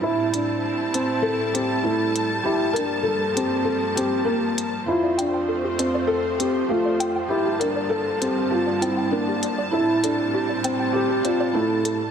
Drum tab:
HH |-x-x-x-x|-x-x-x-x|-x-x-x-x|-x-x-x-x|

HH |-x-x-x-x|